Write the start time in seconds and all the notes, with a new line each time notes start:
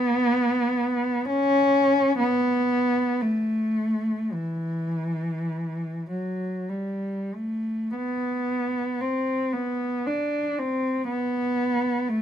Already playing: B3
1.26 C#4
2.19 B3
3.21 A3
4.32 E3
6.10 F#3
6.70 G3
7.34 A3
7.96 B3
9.01 C4
9.53 B3
10.07 D4
10.59 C4
11.08 B3
12.09 A3